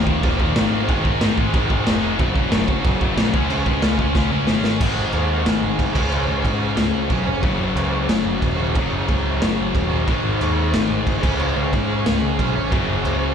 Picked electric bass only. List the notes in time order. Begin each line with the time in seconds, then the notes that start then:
Already playing: D#1
0.24 D#1
0.40 D#1
0.56 G#1
0.89 G#1
1.21 G#2
1.38 G#1
1.54 G#1
1.71 G#1
1.86 F1
2.20 F#1
2.52 F#1
2.85 F#1
3.01 F#1
3.17 A#1
3.34 C#2
3.49 C#2
3.82 C#2
3.99 C#2
4.15 C#2
4.31 C#2
4.48 G#1
4.80 G#1
4.97 G#1
5.13 D#2
5.46 G#1
5.63 G#1
5.79 F#1
5.96 C#2
6.12 C#2
6.28 C#2
6.45 G#2
6.77 C#2
6.94 C#2
7.11 B1
7.27 F1
7.43 F#1
7.60 F#1
7.76 C#2
8.08 F#1
8.25 F#1
8.43 D#1
8.58 D#1
8.76 F#1
8.91 F#1
9.09 C#2
9.43 F#1
9.60 F#1
9.75 D#1
9.91 D#1
10.08 G#1
10.24 G#1
10.41 D#2
10.73 G#1
10.90 G#1
11.07 F#1
11.23 C#2
11.40 C#2
11.56 C#2
11.73 G#2
12.07 C#2
12.23 C#2
12.40 B1
12.57 G#1
12.72 F#1
12.89 F#1
13.05 C#2